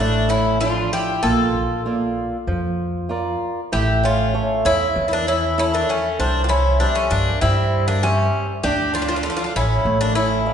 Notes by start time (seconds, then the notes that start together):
Already playing: A1 A3
0.00 D4
0.29 C#4 E4
0.60 F3 D4 F4 A4
0.93 E4 G4
1.23 A#1 A#3 F4 A4
1.54 A#1
1.86 A#3 F4 D5
2.47 F2 F3
3.09 F4 A#4 D5
3.72 A1 A3 E4 G4
4.03 C#4 F4
4.34 A4 C#5 E5
4.65 E2 C#4 E4
4.95 E2 E3
5.08 A#3 C#4 E4
5.13 D4
5.27 C#4 E4
5.58 C#4 E4 A4 C#5
5.74 A#3 D4
5.89 A3 C#4
6.19 C2 G3 D4 C5
6.44 C4 F4
6.49 C#4 E4
6.80 G3 D4 G4 C5 E5
6.95 A3 C#4
7.10 G2 A#3 D4
7.41 G2 G3 C4 E4
7.88 A#3 D4
8.02 G3 C#4 G4 C5 E5
8.63 D2 D4 G4
8.94 D4 F4
9.02 D4 F4
9.09 D4 F4
9.16 D4 F4
9.23 D4 F4 A4
9.30 D4 F4
9.37 D4 F4
9.44 D4 F4
9.56 A1 C#4 E4
9.85 A1 A3
10.01 A#3 D4
10.15 C#4 E4
10.46 A4 D5 F5